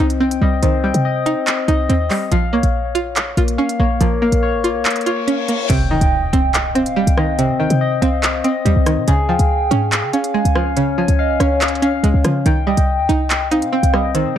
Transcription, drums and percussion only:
0.10 closed hi-hat medium
0.31 closed hi-hat medium
0.63 closed hi-hat medium
0.94 closed hi-hat medium
1.26 closed hi-hat medium
1.47 clap loud
1.47 closed hi-hat medium
1.68 closed hi-hat medium
1.90 closed hi-hat medium
2.10 clap medium
2.10 open hi-hat medium
2.32 closed hi-hat medium
2.63 closed hi-hat medium
2.95 closed hi-hat medium
3.16 clap loud
3.16 closed hi-hat medium
3.37 closed hi-hat medium
3.48 closed hi-hat medium
3.69 closed hi-hat medium
4.01 closed hi-hat medium
4.32 closed hi-hat medium
4.64 closed hi-hat medium
4.85 clap loud
4.85 closed hi-hat medium
4.90 closed hi-hat medium
4.96 closed hi-hat medium
5.01 closed hi-hat soft
5.06 closed hi-hat medium
5.28 closed hi-hat medium
5.48 closed hi-hat medium
5.70 closed hi-hat loud
5.70 crash loud
6.01 closed hi-hat medium
6.33 closed hi-hat medium
6.54 clap loud
6.54 closed hi-hat medium
6.75 closed hi-hat medium
6.86 closed hi-hat medium
7.07 closed hi-hat medium
7.18 cross-stick loud
7.39 closed hi-hat loud
7.70 closed hi-hat medium
8.02 closed hi-hat medium
8.23 clap loud
8.23 closed hi-hat medium
8.44 closed hi-hat medium
8.66 closed hi-hat medium
8.86 cross-stick loud
8.86 closed hi-hat medium
9.08 closed hi-hat loud
9.39 closed hi-hat medium
9.71 closed hi-hat medium
9.92 clap loud
9.92 closed hi-hat medium
10.13 closed hi-hat medium
10.24 closed hi-hat medium
10.45 closed hi-hat medium
10.56 cross-stick loud
10.77 closed hi-hat loud
11.08 closed hi-hat medium
11.40 cross-stick medium
11.40 closed hi-hat medium
11.61 clap loud
11.61 closed hi-hat medium
11.68 closed hi-hat medium
11.75 closed hi-hat soft
11.82 closed hi-hat medium
12.04 closed hi-hat medium
12.24 cross-stick medium
12.24 closed hi-hat medium
12.46 closed hi-hat loud
12.77 closed hi-hat medium
13.09 closed hi-hat medium
13.30 clap loud
13.30 closed hi-hat medium
13.51 closed hi-hat medium
13.62 closed hi-hat medium
13.83 closed hi-hat medium
13.94 cross-stick medium
14.15 closed hi-hat medium

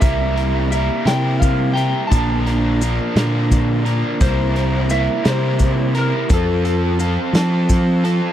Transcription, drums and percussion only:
0.02 kick medium
0.02 closed hi-hat medium
0.02 maracas medium
0.37 closed hi-hat medium
0.72 closed hi-hat medium
0.72 maracas medium
1.07 snare medium
1.07 closed hi-hat medium
1.07 maracas soft
1.42 kick medium
1.42 closed hi-hat medium
1.42 maracas medium
1.77 closed hi-hat medium
1.77 maracas soft
2.11 kick medium
2.11 closed hi-hat medium
2.11 maracas medium
2.47 closed hi-hat medium
2.81 closed hi-hat medium
2.81 maracas medium
3.16 snare loud
3.16 closed hi-hat medium
3.16 maracas soft
3.51 kick medium
3.51 closed hi-hat medium
3.51 maracas medium
3.86 closed hi-hat medium
3.86 maracas soft
4.21 kick loud
4.21 closed hi-hat medium
4.21 maracas medium
4.56 closed hi-hat medium
4.90 closed hi-hat medium
4.90 maracas medium
5.25 snare loud
5.25 closed hi-hat medium
5.25 maracas soft
5.59 kick medium
5.59 closed hi-hat medium
5.59 maracas medium
5.95 closed hi-hat medium
5.95 maracas soft
6.30 kick loud
6.30 closed hi-hat medium
6.30 maracas medium
6.65 closed hi-hat medium
6.65 maracas soft
7.00 closed hi-hat medium
7.00 maracas medium
7.34 snare loud
7.34 closed hi-hat medium
7.34 maracas soft
7.69 kick medium
7.69 closed hi-hat medium
7.69 maracas medium
8.05 closed hi-hat medium
8.05 maracas soft

